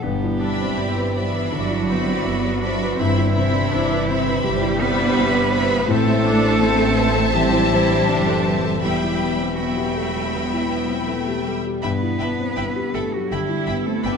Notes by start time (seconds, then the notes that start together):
Already playing: E4
0.01 G1 G2 G3 B3 G4
0.23 E4
0.40 B3 D4 D5 E5 B5
0.61 C4
0.77 G1 B3 C4 E4
0.97 B4
1.14 B3 C5 D5 E5 B5
1.32 E3 E4 B4
1.51 G1 D3 F#3 D4 F#4
1.71 E4
1.88 B3 C4 D5 E5 B5
2.08 C4
2.24 G1 B3 E4
2.45 B4
2.61 D4 D5 E5 B5
2.65 C5
2.82 B4
2.97 G1 G2 E3 C4 E4 C5 E5 B5
3.18 E4
3.34 C3 C4 C5 E5 B5
3.54 D4
3.71 G1 C4 D4 E4
3.91 B4
4.08 C4 C5 E5 B5
4.27 B4
4.43 G1 G3 G4
4.61 E4
4.79 B3 C4 B4 C5 E5 B5
4.98 D4
5.15 G1 C4 E4
5.35 B4
5.51 C5 E5 B5
5.70 B4
5.88 A1 A2 A3 C4 A4 C5 E5 A5
6.07 E4
6.24 C4 D4
6.42 D4
6.60 C4 E4
6.79 A4
6.97 C4 B4
7.16 A4
7.34 E3 G3 C4 G4
7.52 E4
7.71 C4 E4
7.89 D4
8.07 F#1 C4 D4 E4
8.27 A4
8.46 C4 B4
8.65 A4
8.82 E1 E2 G3 G4 E5 G5 B5
9.03 E4
9.21 B3
9.41 C4
9.55 F#3 B3 E4 F#4 B5
9.59 B3 E5 G5
9.77 G4
9.95 A3 A4
10.16 G4
10.33 B2 B3
10.53 E4
10.70 B3
10.89 C4
11.07 A3 B3 E4
11.28 G4
11.45 G3 A4
11.66 G4
11.82 G1 G2 B3 B4 E5 G5 B5
12.03 E4
12.19 G1 B3 D4 E5 G5 B5
12.40 C4
12.56 G1 B3 E4 E5 G5 B5
12.76 G4
12.94 G1 A3 A4 E5 G5 B5
13.13 F#3 F#4 G4
13.31 G1 D3 G3 E4 G4 E5 G5 B5
13.49 E4
13.67 G1 B3 E5 G5 B5
13.86 A3 C4 A4
14.04 G1 B3 D4 E4 B4 E5 G5 B5